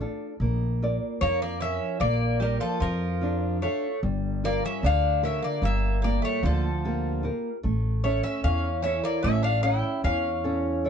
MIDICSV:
0, 0, Header, 1, 5, 480
1, 0, Start_track
1, 0, Tempo, 803213
1, 244, Time_signature, 9, 3, 24, 8
1, 6511, End_track
2, 0, Start_track
2, 0, Title_t, "Bouzouki"
2, 0, Program_c, 0, 25
2, 0, Note_on_c, 0, 74, 66
2, 221, Note_off_c, 0, 74, 0
2, 723, Note_on_c, 0, 73, 95
2, 835, Note_off_c, 0, 73, 0
2, 848, Note_on_c, 0, 74, 80
2, 965, Note_off_c, 0, 74, 0
2, 968, Note_on_c, 0, 76, 96
2, 1189, Note_off_c, 0, 76, 0
2, 1200, Note_on_c, 0, 74, 94
2, 1425, Note_off_c, 0, 74, 0
2, 1448, Note_on_c, 0, 70, 70
2, 1556, Note_off_c, 0, 70, 0
2, 1559, Note_on_c, 0, 69, 83
2, 1682, Note_off_c, 0, 69, 0
2, 1685, Note_on_c, 0, 70, 83
2, 2140, Note_off_c, 0, 70, 0
2, 2164, Note_on_c, 0, 73, 67
2, 2387, Note_off_c, 0, 73, 0
2, 2658, Note_on_c, 0, 74, 97
2, 2763, Note_off_c, 0, 74, 0
2, 2782, Note_on_c, 0, 76, 93
2, 2896, Note_off_c, 0, 76, 0
2, 2905, Note_on_c, 0, 77, 106
2, 3134, Note_off_c, 0, 77, 0
2, 3137, Note_on_c, 0, 76, 84
2, 3250, Note_off_c, 0, 76, 0
2, 3252, Note_on_c, 0, 74, 82
2, 3359, Note_off_c, 0, 74, 0
2, 3378, Note_on_c, 0, 76, 99
2, 3608, Note_off_c, 0, 76, 0
2, 3611, Note_on_c, 0, 74, 79
2, 3730, Note_off_c, 0, 74, 0
2, 3733, Note_on_c, 0, 73, 83
2, 3840, Note_off_c, 0, 73, 0
2, 3858, Note_on_c, 0, 69, 78
2, 4366, Note_off_c, 0, 69, 0
2, 4804, Note_on_c, 0, 73, 73
2, 4918, Note_off_c, 0, 73, 0
2, 4921, Note_on_c, 0, 76, 77
2, 5041, Note_off_c, 0, 76, 0
2, 5044, Note_on_c, 0, 77, 88
2, 5266, Note_off_c, 0, 77, 0
2, 5280, Note_on_c, 0, 76, 80
2, 5392, Note_off_c, 0, 76, 0
2, 5407, Note_on_c, 0, 74, 85
2, 5516, Note_off_c, 0, 74, 0
2, 5523, Note_on_c, 0, 76, 89
2, 5634, Note_off_c, 0, 76, 0
2, 5642, Note_on_c, 0, 77, 90
2, 5752, Note_off_c, 0, 77, 0
2, 5754, Note_on_c, 0, 79, 87
2, 5981, Note_off_c, 0, 79, 0
2, 6002, Note_on_c, 0, 77, 85
2, 6511, Note_off_c, 0, 77, 0
2, 6511, End_track
3, 0, Start_track
3, 0, Title_t, "Nylon-string guitar"
3, 0, Program_c, 1, 24
3, 3, Note_on_c, 1, 62, 47
3, 6, Note_on_c, 1, 65, 39
3, 8, Note_on_c, 1, 69, 47
3, 196, Note_off_c, 1, 62, 0
3, 197, Note_off_c, 1, 65, 0
3, 197, Note_off_c, 1, 69, 0
3, 247, Note_on_c, 1, 58, 63
3, 493, Note_on_c, 1, 65, 51
3, 496, Note_on_c, 1, 70, 46
3, 499, Note_on_c, 1, 74, 56
3, 711, Note_off_c, 1, 58, 0
3, 733, Note_on_c, 1, 53, 67
3, 874, Note_off_c, 1, 65, 0
3, 875, Note_off_c, 1, 70, 0
3, 876, Note_off_c, 1, 74, 0
3, 969, Note_on_c, 1, 65, 48
3, 973, Note_on_c, 1, 70, 41
3, 1194, Note_off_c, 1, 53, 0
3, 1210, Note_on_c, 1, 58, 61
3, 1352, Note_off_c, 1, 65, 0
3, 1353, Note_off_c, 1, 70, 0
3, 1443, Note_on_c, 1, 65, 48
3, 1447, Note_on_c, 1, 70, 45
3, 1450, Note_on_c, 1, 74, 57
3, 1672, Note_off_c, 1, 58, 0
3, 1688, Note_on_c, 1, 53, 63
3, 1828, Note_off_c, 1, 65, 0
3, 1830, Note_off_c, 1, 70, 0
3, 1831, Note_off_c, 1, 74, 0
3, 1920, Note_on_c, 1, 65, 54
3, 1929, Note_on_c, 1, 62, 56
3, 2151, Note_off_c, 1, 53, 0
3, 2162, Note_off_c, 1, 65, 0
3, 2169, Note_on_c, 1, 65, 46
3, 2173, Note_on_c, 1, 77, 54
3, 2311, Note_off_c, 1, 62, 0
3, 2359, Note_off_c, 1, 65, 0
3, 2361, Note_off_c, 1, 77, 0
3, 2408, Note_on_c, 1, 55, 61
3, 2652, Note_on_c, 1, 65, 51
3, 2654, Note_on_c, 1, 67, 47
3, 2656, Note_on_c, 1, 70, 55
3, 2871, Note_off_c, 1, 55, 0
3, 2894, Note_on_c, 1, 50, 64
3, 3033, Note_off_c, 1, 65, 0
3, 3033, Note_off_c, 1, 67, 0
3, 3034, Note_off_c, 1, 70, 0
3, 3122, Note_on_c, 1, 65, 45
3, 3124, Note_on_c, 1, 67, 45
3, 3127, Note_on_c, 1, 70, 54
3, 3354, Note_off_c, 1, 50, 0
3, 3363, Note_on_c, 1, 55, 61
3, 3507, Note_off_c, 1, 65, 0
3, 3507, Note_off_c, 1, 67, 0
3, 3509, Note_off_c, 1, 70, 0
3, 3606, Note_on_c, 1, 65, 51
3, 3611, Note_on_c, 1, 58, 56
3, 3611, Note_on_c, 1, 67, 47
3, 3828, Note_off_c, 1, 55, 0
3, 3852, Note_on_c, 1, 50, 68
3, 3989, Note_off_c, 1, 65, 0
3, 3990, Note_off_c, 1, 67, 0
3, 3992, Note_off_c, 1, 58, 0
3, 4093, Note_on_c, 1, 65, 53
3, 4096, Note_on_c, 1, 58, 61
3, 4096, Note_on_c, 1, 67, 46
3, 4313, Note_off_c, 1, 50, 0
3, 4314, Note_off_c, 1, 65, 0
3, 4319, Note_off_c, 1, 67, 0
3, 4321, Note_on_c, 1, 65, 49
3, 4326, Note_on_c, 1, 67, 48
3, 4330, Note_on_c, 1, 70, 52
3, 4475, Note_off_c, 1, 58, 0
3, 4513, Note_off_c, 1, 65, 0
3, 4517, Note_off_c, 1, 67, 0
3, 4519, Note_off_c, 1, 70, 0
3, 4562, Note_on_c, 1, 57, 63
3, 4804, Note_on_c, 1, 61, 48
3, 4806, Note_on_c, 1, 69, 47
3, 4810, Note_on_c, 1, 73, 53
3, 5027, Note_off_c, 1, 57, 0
3, 5046, Note_on_c, 1, 52, 66
3, 5187, Note_off_c, 1, 61, 0
3, 5187, Note_off_c, 1, 69, 0
3, 5190, Note_off_c, 1, 73, 0
3, 5277, Note_on_c, 1, 64, 48
3, 5282, Note_on_c, 1, 69, 42
3, 5285, Note_on_c, 1, 73, 55
3, 5509, Note_off_c, 1, 52, 0
3, 5524, Note_on_c, 1, 57, 61
3, 5663, Note_off_c, 1, 64, 0
3, 5666, Note_off_c, 1, 69, 0
3, 5667, Note_off_c, 1, 73, 0
3, 5757, Note_on_c, 1, 61, 49
3, 5758, Note_on_c, 1, 69, 46
3, 5761, Note_on_c, 1, 73, 52
3, 5988, Note_off_c, 1, 57, 0
3, 6000, Note_on_c, 1, 52, 67
3, 6143, Note_off_c, 1, 61, 0
3, 6143, Note_off_c, 1, 69, 0
3, 6145, Note_off_c, 1, 73, 0
3, 6239, Note_on_c, 1, 61, 52
3, 6241, Note_on_c, 1, 69, 52
3, 6245, Note_on_c, 1, 73, 59
3, 6466, Note_off_c, 1, 52, 0
3, 6478, Note_off_c, 1, 69, 0
3, 6481, Note_off_c, 1, 73, 0
3, 6481, Note_on_c, 1, 64, 53
3, 6485, Note_on_c, 1, 69, 44
3, 6488, Note_on_c, 1, 73, 56
3, 6511, Note_off_c, 1, 61, 0
3, 6511, Note_off_c, 1, 64, 0
3, 6511, Note_off_c, 1, 69, 0
3, 6511, Note_off_c, 1, 73, 0
3, 6511, End_track
4, 0, Start_track
4, 0, Title_t, "Bouzouki"
4, 0, Program_c, 2, 25
4, 731, Note_on_c, 2, 58, 71
4, 839, Note_off_c, 2, 58, 0
4, 849, Note_on_c, 2, 58, 81
4, 957, Note_off_c, 2, 58, 0
4, 959, Note_on_c, 2, 61, 78
4, 1185, Note_off_c, 2, 61, 0
4, 1195, Note_on_c, 2, 58, 77
4, 1422, Note_off_c, 2, 58, 0
4, 1433, Note_on_c, 2, 55, 69
4, 1550, Note_off_c, 2, 55, 0
4, 1555, Note_on_c, 2, 53, 63
4, 1667, Note_off_c, 2, 53, 0
4, 1674, Note_on_c, 2, 53, 75
4, 2135, Note_off_c, 2, 53, 0
4, 2167, Note_on_c, 2, 57, 65
4, 2389, Note_off_c, 2, 57, 0
4, 2661, Note_on_c, 2, 58, 84
4, 2764, Note_off_c, 2, 58, 0
4, 2778, Note_on_c, 2, 61, 69
4, 2882, Note_off_c, 2, 61, 0
4, 2895, Note_on_c, 2, 62, 80
4, 3113, Note_off_c, 2, 62, 0
4, 3128, Note_on_c, 2, 61, 68
4, 3237, Note_off_c, 2, 61, 0
4, 3242, Note_on_c, 2, 58, 71
4, 3354, Note_off_c, 2, 58, 0
4, 3366, Note_on_c, 2, 58, 75
4, 3588, Note_off_c, 2, 58, 0
4, 3597, Note_on_c, 2, 58, 72
4, 3711, Note_off_c, 2, 58, 0
4, 3717, Note_on_c, 2, 57, 72
4, 3831, Note_off_c, 2, 57, 0
4, 3845, Note_on_c, 2, 53, 55
4, 4359, Note_off_c, 2, 53, 0
4, 4807, Note_on_c, 2, 57, 63
4, 4916, Note_off_c, 2, 57, 0
4, 4924, Note_on_c, 2, 61, 64
4, 5035, Note_off_c, 2, 61, 0
4, 5044, Note_on_c, 2, 61, 74
4, 5266, Note_off_c, 2, 61, 0
4, 5273, Note_on_c, 2, 61, 69
4, 5389, Note_off_c, 2, 61, 0
4, 5400, Note_on_c, 2, 58, 71
4, 5511, Note_off_c, 2, 58, 0
4, 5513, Note_on_c, 2, 61, 79
4, 5629, Note_off_c, 2, 61, 0
4, 5634, Note_on_c, 2, 62, 81
4, 5749, Note_off_c, 2, 62, 0
4, 5754, Note_on_c, 2, 64, 80
4, 5981, Note_off_c, 2, 64, 0
4, 6005, Note_on_c, 2, 61, 74
4, 6511, Note_off_c, 2, 61, 0
4, 6511, End_track
5, 0, Start_track
5, 0, Title_t, "Upright bass"
5, 0, Program_c, 3, 32
5, 238, Note_on_c, 3, 34, 84
5, 576, Note_off_c, 3, 34, 0
5, 725, Note_on_c, 3, 41, 83
5, 1061, Note_off_c, 3, 41, 0
5, 1198, Note_on_c, 3, 34, 81
5, 1536, Note_off_c, 3, 34, 0
5, 1678, Note_on_c, 3, 41, 96
5, 2184, Note_off_c, 3, 41, 0
5, 2407, Note_on_c, 3, 31, 87
5, 2742, Note_off_c, 3, 31, 0
5, 2887, Note_on_c, 3, 38, 87
5, 3221, Note_off_c, 3, 38, 0
5, 3358, Note_on_c, 3, 31, 90
5, 3695, Note_off_c, 3, 31, 0
5, 3841, Note_on_c, 3, 38, 101
5, 4346, Note_off_c, 3, 38, 0
5, 4567, Note_on_c, 3, 33, 82
5, 4901, Note_off_c, 3, 33, 0
5, 5042, Note_on_c, 3, 40, 86
5, 5378, Note_off_c, 3, 40, 0
5, 5522, Note_on_c, 3, 33, 92
5, 5858, Note_off_c, 3, 33, 0
5, 5999, Note_on_c, 3, 40, 94
5, 6504, Note_off_c, 3, 40, 0
5, 6511, End_track
0, 0, End_of_file